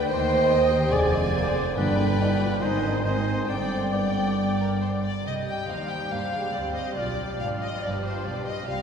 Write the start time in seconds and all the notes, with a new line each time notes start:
Already playing: D3 G5
0.08 D#2 D#3 C5 D#5 G5
0.50 D#5
0.72 G4
0.92 F1 F2 D3 G#4 D5 G#5
1.14 G#3
1.34 A#3 C5
1.56 C4
1.77 G1 G2 D3 D4 B4 D5 G5
2.20 D#4 B4
2.41 F4
2.61 G#1 G#2 D#3 D#4 C5 D#5 G#5
2.84 D4
3.04 D#3 C4 C5 D#5 G#5
3.48 G1 G2 D3 C4 D5 G5
3.93 D3 B3 D5 G5
4.60 A#4
4.82 C5
5.04 D5
5.26 C2 C3 G3 G4 D#5 G5
5.48 G5
5.69 D#2 D#3 G3 D#4 C5 F5
5.89 G5
6.11 G2 G3 A#3 D4 G4 C5 F5
6.33 G#3
6.54 D2 D3 G3 C4 D5
6.76 D#5
6.97 B1 B2 F3 F4 G4 D5 F5
7.19 D4
7.40 G#1 G#2 F3 F4 F5
7.61 D#5
7.83 G1 G2 G4 B4 D5
8.03 C5
8.25 B1 B2 G4 D5
8.46 D#5
8.67 C2 C3 G3 C4 F4 G4 C5 F5